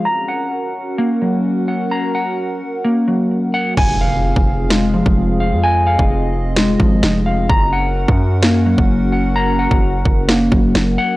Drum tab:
CC |----------------|----------------|x---------------|----------------|
SD |----------------|----------------|--------o-------|--------o---o---|
BD |----------------|----------------|o----o-----o----|---o------o-----|

CC |----------------|----------------|
SD |--------o-------|--------o---o---|
BD |o----o-----o----|---o--o---o-----|